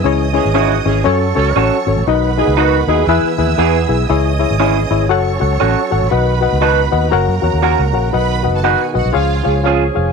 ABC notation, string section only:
X:1
M:4/4
L:1/16
Q:"Swing" 1/4=119
K:Bmix
V:1 name="String section"
[dd']8 [cc']8 | [Bb]8 [ee']8 | [dd']8 [cc']8 | [Bb]8 [^A^a]8 |
[Bb]3 [Aa] [Gg]2 [Ff]2 [^E^e]4 z4 |]